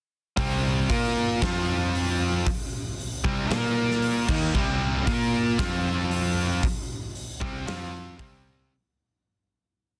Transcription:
0.37 0.86 C2 medium
0.37 0.88 C3 medium
0.37 0.89 G3 loud
0.37 0.89 C4 loud
0.37 kick loud
0.37 open hi-hat medium
0.90 1.39 A#2 medium
0.90 1.41 A#3 medium
0.90 1.41 F4 loud
0.90 1.42 A#4 medium
0.90 kick loud
0.90 open hi-hat medium
1.42 2.43 F2 loud
1.42 2.46 F3 medium
1.42 2.46 C4 loud
1.42 2.46 F4 medium
1.42 kick loud
1.42 snare loud
1.42 open hi-hat medium
1.95 open hi-hat medium
2.47 kick loud
2.47 open hi-hat medium
2.99 open hi-hat medium
3.24 3.49 C2 medium
3.24 3.50 C3 medium
3.24 3.50 G3 loud
3.24 3.51 C4 medium
3.24 kick loud
3.50 4.25 A#2 loud
3.50 4.27 A#3 medium
3.50 4.28 F4 medium
3.50 4.28 A#4 loud
3.50 snare loud
3.50 open hi-hat medium
3.91 snare soft
4.02 open hi-hat medium
4.28 4.53 D#2 loud
4.28 4.53 D#3 medium
4.28 4.54 A#3 loud
4.28 4.54 D#4 medium
4.28 kick loud
4.28 crash loud
4.54 5.04 C2 medium
4.54 5.06 C3 loud
4.54 5.05 G3 loud
4.54 5.06 C4 loud
4.54 kick loud
5.06 5.56 A#2 medium
5.06 5.58 A#3 medium
5.06 5.58 F4 medium
5.06 5.58 A#4 loud
5.06 kick loud
5.06 open hi-hat medium
5.58 6.59 F2 loud
5.58 6.62 F3 medium
5.58 6.62 C4 medium
5.58 6.62 F4 medium
5.58 kick loud
5.58 snare loud
5.58 open hi-hat medium
6.11 open hi-hat medium
6.63 kick loud
6.63 open hi-hat medium
7.15 open hi-hat medium
7.40 7.66 C2 loud
7.40 7.66 C3 medium
7.40 7.66 G3 medium
7.40 7.66 C4 loud
7.40 kick loud
7.66 8.16 F2 loud
7.66 8.18 F3 medium
7.66 8.18 C4 loud
7.66 8.19 F4 medium
7.66 snare loud
7.66 open hi-hat medium
8.18 8.68 C2 medium
8.18 8.70 C3 medium
8.18 8.71 G3 loud
8.18 8.71 C4 loud
8.18 kick loud
8.18 open hi-hat medium

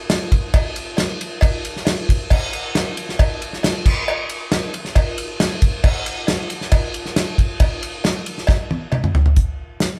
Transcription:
0.10 snare loud
0.10 ride loud
0.10 cowbell medium
0.32 kick medium
0.32 ride medium
0.54 kick loud
0.54 ride loud
0.54 cowbell loud
0.76 ride medium
0.97 snare loud
0.97 ride loud
0.97 cowbell medium
1.21 ride medium
1.41 kick loud
1.41 ride loud
1.41 cowbell loud
1.65 ride medium
1.77 snare soft
1.85 snare loud
1.85 ride loud
1.85 cowbell medium
2.09 kick medium
2.09 ride medium
2.30 kick loud
2.30 crash loud
2.30 cowbell medium
2.53 ride medium
2.75 snare loud
2.75 ride medium
2.75 cowbell medium
2.97 ride medium
3.09 snare soft
3.19 kick loud
3.19 ride loud
3.19 cowbell loud
3.42 ride medium
3.53 snare soft
3.63 snare loud
3.63 ride loud
3.63 cowbell medium
3.86 kick loud
3.86 crash loud
4.08 cowbell loud
4.29 ride medium
4.52 snare loud
4.52 ride medium
4.52 cowbell medium
4.74 ride medium
4.85 snare soft
4.95 kick loud
4.95 ride loud
4.95 cowbell loud
5.18 ride medium
5.40 snare loud
5.40 ride loud
5.40 cowbell medium
5.62 kick medium
5.62 ride medium
5.84 kick loud
5.84 crash loud
5.84 cowbell medium
6.06 ride medium
6.27 snare loud
6.27 ride loud
6.27 cowbell medium
6.50 ride medium
6.61 snare soft
6.72 kick loud
6.72 ride loud
6.72 cowbell loud
6.94 ride medium
7.06 snare soft
7.16 snare loud
7.16 ride loud
7.16 cowbell medium
7.38 kick medium
7.38 ride medium
7.60 kick loud
7.60 ride loud
7.60 cowbell medium
7.83 ride medium
8.04 snare loud
8.04 ride medium
8.04 cowbell medium
8.26 ride medium
8.38 snare soft
8.47 kick loud
8.47 snare medium
8.47 cowbell loud
8.71 high tom medium
8.92 mid tom medium
8.92 cowbell medium
9.04 mid tom medium
9.15 floor tom loud
9.26 floor tom medium
9.36 kick loud
9.36 closed hi-hat medium
9.80 snare loud
9.80 closed hi-hat medium

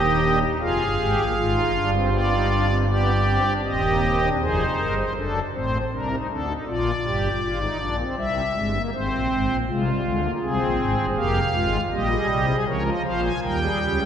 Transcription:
0.00 0.44 D#1 medium
0.00 0.44 D#2 medium
0.00 0.20 D#4 medium
0.00 0.39 G4 medium
0.00 0.39 D#5 medium
0.23 0.39 D4 medium
0.41 0.57 D#4 medium
0.60 0.76 F1 medium
0.60 0.76 F2 medium
0.60 0.83 F4 medium
0.60 1.25 G#4 medium
0.60 1.90 F5 medium
0.79 0.95 G1 medium
0.79 0.95 G2 medium
0.99 1.15 G#1 medium
0.99 1.14 G#2 medium
0.99 1.22 G4 medium
1.17 1.33 A#1 medium
1.17 1.33 A#2 medium
1.37 1.60 G#1 medium
1.37 1.60 G#2 medium
1.37 2.67 F4 medium
1.56 1.72 D#4 medium
1.74 3.38 G1 medium
1.74 3.38 G2 medium
1.74 1.90 D4 medium
1.93 2.09 C4 medium
2.12 2.29 B3 medium
2.12 2.78 D5 medium
2.31 2.47 D#4 medium
2.50 2.66 D4 medium
2.69 2.85 C4 medium
2.87 3.11 B3 medium
2.87 3.53 G4 medium
2.87 3.53 D5 medium
3.26 3.42 C4 medium
3.45 3.61 D4 medium
3.64 4.29 D#1 medium
3.64 4.29 D#2 medium
3.64 3.81 C4 medium
3.64 4.29 G4 medium
3.64 4.29 D#5 medium
3.83 4.00 A#3 medium
4.02 4.19 C4 medium
4.21 4.37 D4 medium
4.40 4.64 F1 medium
4.40 4.64 F2 medium
4.40 5.05 D#4 medium
4.40 4.64 G#4 medium
4.40 4.95 C5 medium
4.78 5.02 G1 medium
4.78 5.01 G2 medium
4.78 4.94 A#4 medium
4.97 5.13 C5 medium
5.16 5.40 F#1 medium
5.16 5.40 F#2 medium
5.16 5.40 D4 medium
5.16 5.40 A4 medium
5.54 5.78 A1 medium
5.54 5.78 A2 medium
5.54 5.78 C4 medium
5.54 5.78 C5 medium
5.92 6.16 C2 medium
5.92 6.16 C3 medium
5.92 6.08 D4 medium
5.92 6.16 A#4 medium
6.11 6.27 D#4 medium
6.29 6.53 D2 medium
6.29 6.53 D3 medium
6.29 6.46 D4 medium
6.29 6.53 A4 medium
6.49 6.65 D#4 medium
6.68 6.91 A#1 medium
6.68 6.91 A#2 medium
6.68 6.91 F4 medium
6.68 7.97 D5 medium
7.05 7.29 G1 medium
7.05 7.29 G2 medium
7.05 7.28 G4 medium
7.43 7.66 G#1 medium
7.43 7.66 G#2 medium
7.43 7.59 F4 medium
7.61 7.77 D#4 medium
7.79 8.03 A#1 medium
7.79 8.03 A#2 medium
7.79 7.96 D4 medium
7.99 8.15 C4 medium
8.18 8.41 C2 medium
8.18 8.41 C3 medium
8.18 8.41 G3 medium
8.18 8.82 E5 medium
8.55 8.78 G1 medium
8.55 8.78 G2 medium
8.55 8.71 G#3 medium
8.74 8.90 A#3 medium
8.93 9.09 G#1 medium
8.93 9.09 G#2 medium
8.93 9.57 C4 medium
8.93 9.57 C5 medium
9.12 9.28 A#1 medium
9.12 9.28 A#2 medium
9.30 9.46 G#1 medium
9.30 9.46 G#2 medium
9.49 9.65 A#1 medium
9.49 9.65 A#2 medium
9.67 9.90 C2 medium
9.67 9.90 C3 medium
9.67 9.83 G#3 medium
9.67 10.31 F4 medium
9.86 10.02 G3 medium
10.03 10.27 D2 medium
10.03 10.27 D3 medium
10.03 10.20 G#3 medium
10.23 10.39 A#3 medium
10.41 10.58 C2 medium
10.41 10.58 C3 medium
10.41 11.06 C4 medium
10.41 11.06 G#4 medium
10.60 10.77 A#1 medium
10.60 10.76 A#2 medium
10.79 10.95 G#1 medium
10.79 10.95 G#2 medium
10.97 11.14 G1 medium
10.97 11.14 G2 medium
11.16 11.39 F1 medium
11.16 11.40 F2 medium
11.16 11.40 A#3 medium
11.16 11.40 G4 medium
11.16 11.81 F5 medium
11.54 11.78 G#1 medium
11.54 11.78 G#2 medium
11.54 11.78 G#3 medium
11.54 11.77 F4 medium
11.91 12.15 A#1 medium
11.91 12.15 A#2 medium
11.91 12.56 G3 medium
11.91 12.08 G4 medium
11.91 12.56 D#5 medium
12.11 12.27 G#4 medium
12.29 12.52 C2 medium
12.29 12.52 C3 medium
12.29 12.45 G4 medium
12.48 12.64 G#4 medium
12.66 12.90 C#2 medium
12.66 12.90 C#3 medium
12.66 13.32 F3 medium
12.66 12.90 A#4 medium
12.66 12.83 C#5 medium
12.86 13.02 D#5 medium
13.05 13.29 A#1 medium
13.05 13.29 A#2 medium
13.05 13.29 C5 medium
13.05 13.21 F5 medium
13.24 13.40 G#5 medium
13.43 13.67 D#2 medium
13.43 13.67 D#3 medium
13.43 14.05 G3 medium
13.43 13.60 A#4 medium
13.43 14.05 G5 medium
13.62 13.79 G#4 medium
13.81 14.05 C#2 medium
13.81 14.05 C#3 medium
13.81 13.98 G4 medium
14.01 14.05 F4 medium

